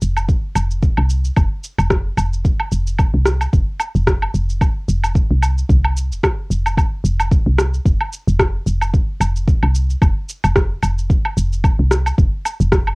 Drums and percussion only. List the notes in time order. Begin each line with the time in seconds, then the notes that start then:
0.02 shaker
0.17 low woodblock, shaker
0.29 kick, shaker
0.55 low woodblock, shaker
0.71 shaker
0.83 kick, shaker
0.97 low woodblock
1.10 shaker
1.25 shaker
1.37 kick, low woodblock, shaker
1.64 shaker
1.79 low woodblock, shaker
1.90 kick, cross-stick, shaker
2.18 low woodblock, shaker
2.33 shaker
2.45 kick, shaker
2.60 low woodblock
2.72 shaker
2.87 shaker
2.99 kick, low woodblock, shaker
3.26 cross-stick, shaker
3.41 low woodblock, shaker
3.53 kick, shaker
3.80 low woodblock, shaker
3.95 shaker
4.07 kick, cross-stick, shaker
4.22 low woodblock
4.35 shaker
4.50 shaker
4.61 kick, low woodblock, shaker
4.89 shaker
5.04 low woodblock, shaker
5.15 kick, shaker
5.42 low woodblock, shaker
5.58 shaker
5.69 kick, shaker
5.84 low woodblock
5.97 shaker
6.12 shaker
6.23 kick, cross-stick, low woodblock, shaker
6.51 shaker
6.66 low woodblock, shaker
6.77 kick, low woodblock, shaker
7.05 shaker
7.20 low woodblock, shaker
7.32 kick, shaker
7.58 cross-stick, low woodblock, shaker
7.74 shaker
7.86 kick, shaker
8.01 low woodblock
8.13 shaker
8.28 shaker
8.40 kick, cross-stick, low woodblock, shaker
8.67 shaker
8.81 low woodblock, shaker
8.94 kick, shaker
9.21 low woodblock, shaker
9.36 shaker
9.48 kick, shaker
9.63 low woodblock
9.75 shaker
9.90 shaker
10.02 kick, low woodblock, shaker
10.29 shaker
10.44 low woodblock, shaker
10.56 kick, cross-stick, shaker
10.83 low woodblock, shaker
10.99 shaker
11.10 kick, shaker
11.25 low woodblock
11.38 shaker
11.53 shaker
11.64 kick, low woodblock, shaker
11.91 cross-stick, shaker
12.06 low woodblock, shaker
12.18 kick, shaker
12.45 low woodblock, shaker
12.61 shaker
12.72 kick, cross-stick, shaker
12.87 low woodblock